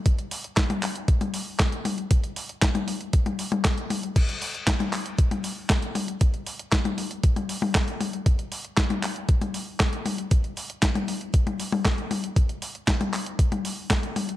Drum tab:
CC |----------------|----------------|x---------------|----------------|
HH |xxoxxxoxxxo-xxox|xxoxxxoxxxoxxxox|xxoxxxoxxxo-xxox|xxoxxxoxxxo-xxox|
CP |----x-x-----x---|----x-------x---|----x-x-----x---|----x-------x---|
SD |----o-------o---|----o-------o---|----o-------o---|----o-------o---|
T1 |-----o---o----o-|-----o---o-o--o-|-----o---o----o-|-----o---o-o--o-|
BD |o---o---o---o---|o---o---o---o---|o---o---o---o---|o---o---o---o---|

CC |----------------|----------------|----------------|
HH |xxoxxxoxxxo-xxox|xxoxxxoxxxo-xxox|xxoxxxoxxxo-xxox|
CP |----x-x-----x---|----x-------x---|----x-x-----x---|
SD |----o-------o---|----o-------o---|----o-------o---|
T1 |-----o---o----o-|-----o---o-o--o-|-----o---o----o-|
BD |o---o---o---o---|o---o---o---o---|o---o---o---o---|